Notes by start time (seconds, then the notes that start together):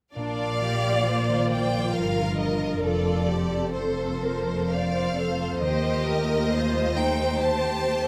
0.15 A#1 A#2 D4 D5 F5
0.38 F4
0.60 F3 G4
0.83 F4
1.06 F3 F4 C5
1.28 D#3
1.51 F3 G5
1.73 D#3
1.95 G1 G2 F3 A#4 F5
2.18 D4
2.38 F3 D#5
2.63 A#4
2.84 F1 F2 F3 F4 A4 D5
3.07 A4
3.29 C4 G4 A4
3.52 A4
3.75 C4 A4 C5
3.99 A#3
4.22 C4 A#4
4.47 A#3
4.70 C4 C5 D5 F5
4.93 F4
5.16 C4 A4 C5
5.38 C5
5.61 D#2 D#3 G4 C5 D#5
5.83 F4
6.05 A3 A#4
6.27 F4
6.49 A3 F4 C5
6.72 G3
6.94 A3 D#4 C5 G5
7.16 G3
7.39 A3 G4 C5 A5
7.60 C4
7.82 A3 C5
8.04 A4